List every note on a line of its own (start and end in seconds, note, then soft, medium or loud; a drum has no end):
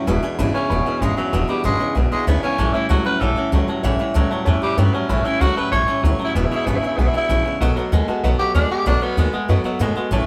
0.07 0.19 E1 loud
0.07 0.21 E2 medium
0.07 0.23 E2 medium
0.07 0.22 B2 loud
0.07 0.23 B2 loud
0.07 0.23 E3 medium
0.07 0.23 G#3 medium
0.07 0.22 D4 loud
0.07 0.21 E4 medium
0.07 0.17 B4 loud
0.07 0.17 E5 loud
0.07 0.17 G#5 loud
0.23 0.37 E2 medium
0.23 0.37 B2 medium
0.23 0.38 E3 medium
0.23 0.39 G#3 medium
0.23 0.39 D4 medium
0.23 0.39 E4 medium
0.23 0.32 B4 medium
0.23 0.32 E5 medium
0.23 0.33 G#5 loud
0.23 muted upright bass stroke medium
0.38 0.50 G#1 loud
0.38 0.53 E2 medium
0.38 0.54 E2 medium
0.38 0.55 B2 loud
0.38 0.53 C#3 medium
0.38 0.55 E3 loud
0.38 0.55 G#3 loud
0.38 0.54 D4 loud
0.38 0.54 E4 loud
0.38 0.48 B4 medium
0.38 0.48 E5 medium
0.38 0.48 B5 loud
0.53 0.69 E2 medium
0.53 0.69 C#3 loud
0.53 0.69 E3 soft
0.53 0.70 G#3 soft
0.53 1.03 C#4 medium
0.53 0.71 D4 medium
0.53 0.70 E4 medium
0.53 0.63 B4 medium
0.53 0.64 E5 medium
0.53 0.64 B5 medium
0.53 muted upright bass stroke medium
0.70 0.81 E1 medium
0.70 0.84 E2 medium
0.70 0.85 B2 loud
0.70 0.86 E3 medium
0.70 0.87 G#3 medium
0.70 0.86 D4 medium
0.70 0.85 E4 medium
0.70 0.79 B4 loud
0.70 0.79 E5 medium
0.70 0.79 B5 loud
0.85 1.00 E2 medium
0.85 1.00 B2 medium
0.85 1.01 E3 soft
0.85 1.02 G#3 soft
0.85 1.02 D4 medium
0.85 1.02 E4 medium
0.85 0.95 B4 medium
0.85 0.95 E5 medium
0.85 0.95 F#5 medium
0.85 muted upright bass stroke medium
1.01 1.13 G#1 medium
1.01 1.16 E2 medium
1.01 1.17 E2 medium
1.01 1.18 B2 medium
1.01 1.16 C#3 loud
1.01 1.18 E3 medium
1.01 1.17 G#3 medium
1.01 1.17 D4 medium
1.01 1.16 E4 medium
1.01 1.11 B4 medium
1.01 1.11 E5 medium
1.01 1.11 G#5 medium
1.17 1.31 E2 medium
1.17 1.32 C#3 medium
1.17 1.32 E3 soft
1.17 1.48 F#3 medium
1.17 1.33 G#3 soft
1.17 1.33 D4 soft
1.17 1.33 E4 medium
1.17 1.26 B4 medium
1.17 1.27 E5 medium
1.17 1.27 G#5 medium
1.17 muted upright bass stroke medium
1.33 1.44 E1 medium
1.33 1.47 E2 medium
1.33 1.49 E2 medium
1.33 1.47 B2 loud
1.33 1.49 B2 medium
1.33 1.49 E3 medium
1.33 1.48 G#3 medium
1.33 1.47 D4 medium
1.33 1.46 E4 medium
1.33 1.42 B4 loud
1.33 1.42 E5 medium
1.33 1.42 G#5 loud
1.48 1.63 E2 medium
1.48 1.63 B2 medium
1.48 1.63 E3 soft
1.48 1.64 G3 medium
1.48 1.64 G#3 soft
1.48 1.64 D4 medium
1.48 1.64 E4 medium
1.48 1.58 B4 medium
1.48 1.58 E5 medium
1.48 1.58 B5 medium
1.48 muted upright bass stroke medium
1.64 1.76 G#1 medium
1.64 1.80 E2 medium
1.64 1.79 E2 medium
1.64 1.80 B2 medium
1.64 1.79 C#3 medium
1.64 1.80 E3 medium
1.64 1.80 G#3 medium
1.64 1.95 G#3 loud
1.64 1.79 D4 medium
1.64 1.78 E4 loud
1.64 1.74 B4 medium
1.64 1.74 E5 medium
1.64 1.74 G#5 medium
1.79 1.94 E2 medium
1.79 1.94 C#3 medium
1.79 1.94 E3 soft
1.79 1.95 G#3 soft
1.79 1.95 D4 medium
1.79 1.95 E4 soft
1.79 1.89 B4 medium
1.79 1.90 E5 medium
1.79 1.90 G#5 medium
1.79 muted upright bass stroke medium
1.95 2.07 B1 medium
1.95 2.10 E2 medium
1.95 2.10 B2 loud
1.95 2.11 E3 medium
1.95 2.11 G#3 medium
1.95 2.11 D4 medium
1.95 2.11 E4 medium
1.95 2.05 B4 loud
1.95 2.05 E5 medium
1.95 2.05 G#5 loud
2.11 2.26 E2 medium
2.11 2.26 B2 medium
2.11 2.27 E3 soft
2.11 2.27 G#3 medium
2.11 2.27 G#3 soft
2.11 2.27 D4 medium
2.11 2.27 E4 medium
2.11 2.20 B4 medium
2.11 2.21 E5 medium
2.11 2.21 G#5 medium
2.11 muted upright bass stroke medium
2.26 2.39 D2 medium
2.26 2.43 E2 medium
2.26 2.41 E2 medium
2.26 2.43 B2 medium
2.26 2.42 C#3 medium
2.26 2.43 E3 medium
2.26 2.43 G#3 medium
2.26 2.42 B3 medium
2.26 2.42 D4 loud
2.26 2.42 E4 loud
2.26 2.36 B4 medium
2.26 2.36 E5 medium
2.26 2.36 G#5 medium
2.42 2.57 E2 medium
2.42 2.57 C#3 medium
2.42 2.58 E3 soft
2.42 2.59 G#3 soft
2.42 2.74 C#4 medium
2.42 2.59 D4 soft
2.42 2.59 E4 medium
2.42 2.52 B4 medium
2.42 2.52 E5 medium
2.42 2.52 G#5 medium
2.42 muted upright bass stroke medium
2.58 2.70 A1 medium
2.58 2.74 A2 medium
2.58 2.73 A2 medium
2.58 2.74 E3 medium
2.58 2.73 E3 loud
2.58 2.74 G3 medium
2.58 2.74 C#4 medium
2.58 2.73 E4 medium
2.58 2.68 C#5 loud
2.58 2.68 E5 medium
2.58 2.68 A5 loud
2.73 2.89 A2 medium
2.73 2.89 E3 medium
2.73 2.89 G3 soft
2.73 2.89 C#4 medium
2.73 2.89 E4 medium
2.73 2.83 C#5 medium
2.73 2.84 E5 medium
2.73 2.84 A5 medium
2.73 muted upright bass stroke medium
2.89 3.01 C#2 medium
2.89 3.05 A2 medium
2.89 3.04 A2 medium
2.89 3.05 E3 medium
2.89 3.05 F#3 medium
2.89 3.06 G3 medium
2.89 3.05 C#4 medium
2.89 3.04 E4 medium
2.89 3.05 F#4 medium
2.89 2.99 C#5 medium
2.89 2.99 E5 medium
2.89 2.99 A5 medium
3.05 3.20 A2 medium
3.05 3.20 F#3 medium
3.05 3.20 G3 soft
3.05 3.21 C#4 soft
3.05 3.21 E4 medium
3.05 3.22 B4 medium
3.05 3.15 C#5 medium
3.05 3.15 E5 medium
3.05 3.15 F#5 medium
3.05 muted upright bass stroke medium
3.20 3.33 A1 medium
3.20 3.35 A2 medium
3.20 3.37 E3 medium
3.20 3.36 E3 medium
3.20 3.37 G3 medium
3.20 3.36 C#4 medium
3.20 3.35 E4 medium
3.20 3.51 A4 medium
3.20 3.31 C#5 loud
3.20 3.31 E5 medium
3.20 3.31 F#5 loud
3.36 3.51 A2 medium
3.36 3.52 E3 medium
3.36 3.52 G3 soft
3.36 3.52 C#4 soft
3.36 3.52 E4 medium
3.36 3.46 C#5 medium
3.36 3.46 E5 medium
3.36 3.47 F#5 medium
3.36 muted upright bass stroke medium
3.52 3.64 C#2 medium
3.52 3.68 A2 medium
3.52 3.67 A2 medium
3.52 3.68 E3 medium
3.52 3.67 F#3 loud
3.52 3.69 G3 medium
3.52 3.68 C#4 medium
3.52 3.67 E4 medium
3.52 3.62 C#5 medium
3.52 3.62 E5 medium
3.52 3.62 A5 medium
3.68 3.83 A2 medium
3.68 3.83 F#3 medium
3.68 3.83 G3 soft
3.68 3.84 C#4 medium
3.68 3.84 E4 medium
3.68 3.78 C#5 medium
3.68 3.78 E5 medium
3.68 3.78 A5 loud
3.68 muted upright bass stroke medium
3.83 3.95 A1 loud
3.83 3.99 A2 medium
3.83 3.98 A2 medium
3.83 4.00 E3 medium
3.83 3.99 E3 medium
3.83 4.00 G3 medium
3.83 3.99 C#4 loud
3.83 3.98 E4 loud
3.83 3.93 C#5 loud
3.83 3.93 E5 loud
3.83 3.93 F#5 loud
3.99 4.14 A2 medium
3.99 4.14 E3 medium
3.99 4.14 G3 medium
3.99 4.14 C#4 medium
3.99 4.15 E4 medium
3.99 4.09 C#5 medium
3.99 4.09 E5 medium
3.99 4.09 F#5 medium
3.99 muted upright bass stroke medium
4.14 4.27 C#2 medium
4.14 4.31 A2 medium
4.14 4.30 A2 medium
4.14 4.31 E3 loud
4.14 4.30 F#3 loud
4.14 4.31 G3 medium
4.14 4.31 C#4 loud
4.14 4.30 E4 loud
4.14 4.24 C#5 medium
4.14 4.25 E5 medium
4.14 4.25 A5 loud
4.30 4.45 A2 medium
4.30 4.45 F#3 medium
4.30 4.46 G3 soft
4.30 4.46 C#4 medium
4.30 4.47 E4 medium
4.30 4.40 C#5 medium
4.30 4.40 E5 medium
4.30 4.40 A5 loud
4.30 muted upright bass stroke medium
4.45 4.58 E2 medium
4.45 4.61 A2 medium
4.45 4.62 E3 medium
4.45 4.61 E3 loud
4.45 4.63 G3 medium
4.45 4.62 C#4 medium
4.45 4.60 E4 medium
4.45 4.55 C#5 loud
4.45 4.55 E5 loud
4.45 4.56 A5 loud
4.62 4.77 A2 medium
4.62 4.77 E3 medium
4.62 4.79 G3 medium
4.62 4.77 G3 soft
4.62 4.77 C#4 medium
4.62 4.78 E4 medium
4.62 4.72 C#5 medium
4.62 4.72 E5 medium
4.62 4.72 B5 medium
4.62 muted upright bass stroke medium
4.77 4.89 G2 medium
4.77 4.94 A2 medium
4.77 4.92 A2 medium
4.77 4.94 E3 medium
4.77 4.93 F#3 loud
4.77 4.94 G3 medium
4.77 4.95 B3 medium
4.77 4.93 C#4 medium
4.77 4.92 E4 medium
4.77 4.87 C#5 medium
4.77 4.87 E5 medium
4.77 4.87 G5 medium
4.93 5.08 A2 medium
4.93 5.08 F#3 medium
4.93 5.09 G3 soft
4.93 5.26 C#4 medium
4.93 5.09 C#4 soft
4.93 5.10 E4 medium
4.93 5.03 C#5 medium
4.93 5.04 E5 medium
4.93 5.04 A5 medium
4.93 muted upright bass stroke medium
5.09 5.21 A1 medium
5.09 5.23 A2 medium
5.09 5.25 A2 medium
5.09 5.24 E3 medium
5.09 5.25 E3 medium
5.09 5.26 G3 medium
5.09 5.25 C#4 medium
5.09 5.24 E4 medium
5.09 5.19 C#5 loud
5.09 5.19 E5 medium
5.09 5.19 B5 loud
5.24 5.39 A2 medium
5.24 5.40 E3 medium
5.24 5.41 G3 medium
5.24 5.41 C#4 medium
5.24 5.42 E4 loud
5.24 5.41 E4 medium
5.24 5.34 C#5 medium
5.24 5.34 E5 medium
5.24 5.34 A5 medium
5.24 muted upright bass stroke medium
5.40 5.52 C#2 loud
5.40 5.55 A2 medium
5.40 5.57 A2 medium
5.40 5.57 E3 medium
5.40 5.55 F#3 medium
5.40 5.57 G3 medium
5.40 5.57 C#4 medium
5.40 5.56 E4 loud
5.40 5.56 F#4 loud
5.40 5.50 C#5 medium
5.40 5.50 E5 medium
5.40 5.50 F#5 medium
5.56 5.71 A2 medium
5.56 5.71 F#3 medium
5.56 5.72 G3 soft
5.56 5.73 C#4 medium
5.56 5.73 E4 medium
5.56 5.71 B4 medium
5.56 5.66 C#5 medium
5.56 5.66 E5 medium
5.56 5.66 A5 medium
5.56 muted upright bass stroke medium
5.71 5.83 A1 medium
5.71 5.86 A2 medium
5.71 5.87 E3 loud
5.71 5.88 E3 medium
5.71 5.88 G3 medium
5.71 5.88 C#4 medium
5.71 5.87 E4 medium
5.71 5.81 C#5 loud
5.71 6.03 C#5 loud
5.71 5.81 E5 medium
5.71 5.82 A5 loud
5.87 6.02 A2 medium
5.87 6.02 E3 medium
5.87 6.04 G3 medium
5.87 6.04 C#4 medium
5.87 6.04 E4 medium
5.87 5.97 C#5 medium
5.87 5.97 E5 medium
5.87 5.97 A5 medium
5.87 muted upright bass stroke medium
6.03 6.15 D2 loud
6.03 6.18 A2 medium
6.03 6.20 A2 medium
6.03 6.20 E3 medium
6.03 6.18 F#3 medium
6.03 6.20 G3 medium
6.03 6.20 C#4 medium
6.03 6.18 E4 loud
6.03 6.13 C#5 medium
6.03 6.13 E5 medium
6.03 6.13 A5 medium
6.19 6.33 A2 medium
6.19 6.34 F#3 medium
6.19 6.36 G3 soft
6.19 6.36 C#4 soft
6.19 6.35 E4 soft
6.19 6.29 C#5 medium
6.19 6.29 E5 medium
6.19 6.29 A5 medium
6.19 muted upright bass stroke medium
6.24 6.35 E4 loud
6.34 6.46 E1 loud
6.34 6.49 E2 medium
6.34 6.51 E2 medium
6.34 6.49 B2 medium
6.34 6.51 B2 medium
6.34 6.51 E3 medium
6.34 6.52 G#3 medium
6.34 6.47 B3 medium
6.34 6.51 D4 medium
6.34 6.50 E4 medium
6.34 6.45 B4 loud
6.34 6.45 E5 medium
6.34 6.45 G#5 loud
6.45 6.55 E4 medium
6.50 6.65 E2 medium
6.50 6.65 B2 medium
6.50 6.67 E3 medium
6.50 6.67 G#3 medium
6.50 6.67 D4 medium
6.50 6.67 E4 medium
6.50 6.60 B4 medium
6.50 6.60 E5 medium
6.50 6.61 G#5 medium
6.50 muted upright bass stroke medium
6.55 6.67 E4 medium
6.66 6.78 G#1 medium
6.66 6.81 E2 medium
6.66 6.82 E2 medium
6.66 6.83 B2 medium
6.66 6.81 C#3 medium
6.66 6.83 E3 medium
6.66 6.83 G#3 medium
6.66 6.77 B3 medium
6.66 6.82 D4 medium
6.66 6.82 E4 medium
6.66 6.76 B4 medium
6.66 6.76 E5 medium
6.66 6.76 G#5 medium
6.76 6.86 E4 medium
6.82 6.96 E2 medium
6.82 6.97 C#3 medium
6.82 6.98 E3 soft
6.82 6.98 G#3 medium
6.82 6.99 D4 soft
6.82 6.98 E4 soft
6.82 6.92 B4 medium
6.82 6.92 E5 medium
6.82 6.92 G#5 medium
6.82 muted upright bass stroke medium
6.87 6.98 E4 medium
6.97 7.09 B1 medium
6.97 7.12 E2 medium
6.97 7.12 B2 medium
6.97 7.14 E3 medium
6.97 7.14 G#3 medium
6.97 7.08 B3 medium
6.97 7.13 D4 medium
6.97 7.08 B4 loud
6.97 7.08 E5 medium
6.97 7.08 G#5 loud
7.01 7.13 E4 medium
7.07 7.16 E4 medium
7.13 7.28 E2 medium
7.13 7.28 B2 medium
7.13 7.29 E3 soft
7.13 7.29 G#3 medium
7.13 7.29 D4 medium
7.13 7.29 E4 medium
7.13 7.59 E4 loud
7.13 7.23 B4 medium
7.13 7.23 E5 medium
7.13 7.23 G#5 medium
7.13 muted upright bass stroke medium
7.29 7.41 A#1 medium
7.29 7.43 E2 medium
7.29 7.45 E2 medium
7.29 7.45 B2 medium
7.29 7.44 C#3 loud
7.29 7.45 E3 medium
7.29 7.46 G#3 medium
7.29 7.45 D4 medium
7.29 7.44 E4 medium
7.29 7.39 B4 medium
7.29 7.39 E5 medium
7.29 7.39 G#5 medium
7.45 7.59 E2 medium
7.45 7.59 C#3 medium
7.45 7.62 E3 soft
7.45 7.62 G#3 soft
7.45 7.61 D4 soft
7.45 7.61 E4 soft
7.45 7.55 B4 medium
7.45 7.55 E5 medium
7.45 7.55 G#5 medium
7.45 muted upright bass stroke medium
7.61 7.72 B1 medium
7.61 7.75 B2 medium
7.61 7.77 B2 medium
7.61 7.77 D#3 medium
7.61 7.75 F#3 medium
7.61 7.77 A3 medium
7.61 7.77 B3 loud
7.61 7.76 F#4 loud
7.61 7.70 B4 loud
7.61 7.70 D#5 loud
7.61 7.71 F#5 loud
7.76 7.90 B2 medium
7.76 7.91 F#3 medium
7.76 7.92 A3 medium
7.76 7.92 B3 medium
7.76 7.92 F#4 medium
7.76 7.86 B4 medium
7.76 7.86 D#5 medium
7.76 7.86 F#5 loud
7.76 muted upright bass stroke medium
7.92 8.04 D#2 medium
7.92 8.08 B2 medium
7.92 8.06 B2 medium
7.92 8.08 D#3 medium
7.92 8.07 G#3 loud
7.92 8.08 A3 loud
7.92 8.08 B3 loud
7.92 8.07 F#4 medium
7.92 8.02 B4 medium
7.92 8.02 D#5 medium
7.92 8.02 F#5 loud
8.08 8.22 B2 medium
8.08 8.22 G#3 medium
8.08 8.23 A3 soft
8.08 8.24 B3 medium
8.08 8.24 F#4 medium
8.08 8.17 B4 medium
8.08 8.17 D#5 medium
8.08 8.17 A5 loud
8.08 muted upright bass stroke medium
8.23 8.35 B1 medium
8.23 8.38 B2 medium
8.23 8.39 D#3 medium
8.23 8.38 F#3 loud
8.23 8.40 A3 medium
8.23 8.40 B3 medium
8.23 8.38 F#4 medium
8.23 8.33 B4 loud
8.23 8.33 D#5 loud
8.23 8.33 F#5 loud
8.39 8.53 B2 medium
8.39 8.54 F#3 medium
8.39 8.54 A3 soft
8.39 8.54 B3 medium
8.39 8.55 F#4 medium
8.39 8.54 G4 medium
8.39 8.48 B4 medium
8.39 8.49 D#5 medium
8.39 8.49 F#5 medium
8.39 muted upright bass stroke medium
8.54 8.66 D#2 medium
8.54 8.70 B2 medium
8.54 8.69 B2 medium
8.54 8.71 D#3 medium
8.54 8.69 G#3 loud
8.54 8.71 A3 medium
8.54 8.70 B3 medium
8.54 8.70 D4 loud
8.54 8.69 F#4 medium
8.54 8.64 B4 medium
8.54 8.65 D#5 medium
8.54 8.64 A5 medium
8.70 8.85 B2 medium
8.70 8.85 G#3 medium
8.70 8.85 A3 soft
8.70 8.86 B3 soft
8.70 8.86 G4 medium
8.70 8.80 B4 medium
8.70 8.80 D#5 medium
8.70 8.80 F#5 medium
8.70 muted upright bass stroke medium
8.86 8.98 B1 medium
8.86 9.02 B2 medium
8.86 9.00 B2 medium
8.86 9.02 D#3 medium
8.86 9.01 F#3 medium
8.86 9.02 A3 medium
8.86 9.01 B3 medium
8.86 9.01 D4 loud
8.86 9.00 F#4 medium
8.86 8.96 B4 loud
8.86 8.96 D#5 medium
8.86 8.96 F#5 loud
9.01 9.16 B2 medium
9.01 9.16 F#3 medium
9.01 9.17 A3 soft
9.01 9.32 B3 loud
9.01 9.17 B3 medium
9.01 9.17 F#4 medium
9.01 9.11 B4 medium
9.01 9.11 D#5 medium
9.01 9.12 F#5 medium
9.01 muted upright bass stroke medium
9.17 9.29 D#2 loud
9.17 9.33 B2 medium
9.17 9.32 B2 medium
9.17 9.33 D#3 medium
9.17 9.32 G#3 medium
9.17 9.34 A3 medium
9.17 9.32 B3 medium
9.17 9.31 F#4 medium
9.17 9.27 B4 medium
9.17 9.27 D#5 medium
9.17 9.27 F#5 medium
9.33 9.47 B2 medium
9.33 9.48 G#3 medium
9.33 9.48 A3 soft
9.33 9.48 B3 soft
9.33 9.49 F#4 medium
9.33 9.43 B4 medium
9.33 9.43 D#5 medium
9.33 9.43 F#5 medium
9.33 muted upright bass stroke medium
9.48 9.60 F#2 medium
9.48 9.63 B2 medium
9.48 9.64 D#3 medium
9.48 9.64 F#3 loud
9.48 9.65 A3 medium
9.48 9.64 B3 medium
9.48 9.63 F#4 medium
9.48 9.58 B4 loud
9.48 9.59 D#5 loud
9.48 9.59 F#5 loud
9.64 9.79 B2 medium
9.64 9.79 F#3 medium
9.64 9.79 A3 medium
9.64 9.79 B3 medium
9.64 9.80 F#4 medium
9.64 9.74 B4 medium
9.64 9.74 D#5 medium
9.64 9.74 F#5 loud
9.64 muted upright bass stroke medium
9.79 9.92 A2 medium
9.79 9.96 B2 medium
9.79 9.95 B2 medium
9.79 9.96 D#3 loud
9.79 9.95 G#3 loud
9.79 9.96 A3 loud
9.79 9.96 B3 loud
9.79 9.94 F#4 loud
9.79 9.90 B4 medium
9.79 9.90 D#5 medium
9.79 9.90 F#5 loud
9.95 10.10 B2 medium
9.95 10.11 G#3 medium
9.95 10.11 A3 medium
9.95 10.12 B3 medium
9.95 10.12 F#4 medium
9.95 10.06 B4 medium
9.95 10.06 D#5 medium
9.95 10.06 F#5 loud
9.95 muted upright bass stroke medium
10.11 10.23 A1 loud
10.11 10.27 A2 medium
10.11 10.26 A2 medium
10.11 10.27 E3 medium
10.11 10.26 E3 medium
10.11 10.27 G3 loud
10.11 10.27 C#4 loud
10.11 10.26 E4 loud
10.11 10.21 C#5 loud
10.11 10.21 E5 loud
10.11 10.22 A5 loud